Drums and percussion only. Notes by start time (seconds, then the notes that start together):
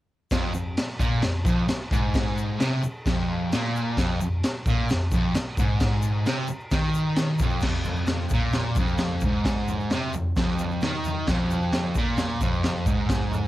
0.31 kick, snare, crash, shaker
0.54 shaker
0.77 snare, crash, shaker
0.99 kick, shaker
1.22 snare, crash, shaker
1.45 kick, shaker
1.68 snare, crash, shaker
1.91 kick, shaker
2.14 kick, snare, crash, shaker
2.38 shaker
2.60 snare, crash, shaker
2.83 shaker
3.06 kick, snare, crash, shaker
3.52 snare, crash, shaker
3.76 shaker
3.97 kick, snare, crash, shaker
4.21 shaker
4.43 snare, crash, shaker
4.66 kick, shaker
4.89 snare, crash, shaker
5.11 kick, shaker
5.35 snare, crash, shaker
5.57 kick, shaker
5.80 kick, snare, crash, shaker
6.02 shaker
6.26 snare, crash, shaker
6.48 shaker
6.60 shaker
6.71 kick, snare, crash, shaker
6.94 shaker
7.16 snare, crash, shaker
7.39 kick, shaker
7.50 shaker
7.60 kick, snare, floor tom, crash, shaker
7.84 floor tom, shaker
7.96 shaker
8.06 snare, floor tom, shaker
8.29 kick, floor tom, shaker
8.52 snare, floor tom, shaker
8.75 kick, floor tom, shaker
8.87 shaker
8.98 snare, floor tom, shaker
9.21 kick, floor tom, shaker
9.45 kick, snare, floor tom, shaker
9.68 floor tom, shaker
9.80 shaker
9.90 snare, floor tom, shaker
10.13 floor tom, shaker
10.36 kick, snare, floor tom, shaker
10.59 floor tom, shaker
10.71 shaker
10.81 snare, floor tom, shaker
11.04 floor tom, shaker
11.27 kick, snare, floor tom, shaker
11.50 floor tom, shaker
11.62 shaker
11.73 snare, floor tom, shaker
11.95 kick, floor tom, shaker
12.17 snare, floor tom, shaker
12.41 kick, floor tom, shaker
12.53 shaker
12.63 snare, floor tom, shaker
12.86 kick, floor tom, shaker
13.09 kick, snare, floor tom, shaker
13.31 floor tom, shaker